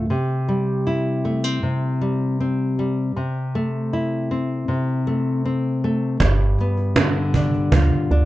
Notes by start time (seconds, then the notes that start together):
0.10 C3
0.48 G3
0.87 E4
1.25 A3
1.44 C4
1.63 C3
2.01 G3
2.40 C4
2.79 G3
3.16 C3
3.55 A3
3.93 E4
4.31 C4
4.68 C3
5.07 A3
5.45 C4
5.84 A3
6.20 G1 G2, cajon bass, cajon slap
6.59 B3, cajon slap
6.77 cajon slap
6.96 D3, cajon slap
7.34 D4, cajon bass
7.53 cajon slap
7.72 D2 F4, cajon bass
8.11 D2 D4